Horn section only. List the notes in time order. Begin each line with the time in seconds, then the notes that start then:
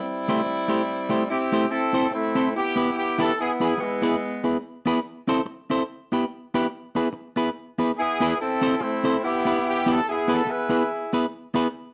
Already playing: G3 C4 E4
1.30 C4 E4 G4
1.70 C4 E4 A4
2.14 A3 C4 E4
2.56 B3 E4 G4
2.98 G4
3.21 A4
3.40 B3 E4 G#4
3.62 G#4
3.80 G#3 B3 E4
7.98 B3 E4 G#4
8.40 C4 E4 A4
8.82 A3 C4 E4
9.24 B3 E4 G4
9.68 G4
9.92 A4
10.08 B3 E4 G#4
10.33 A4
10.49 E4 G#4 B4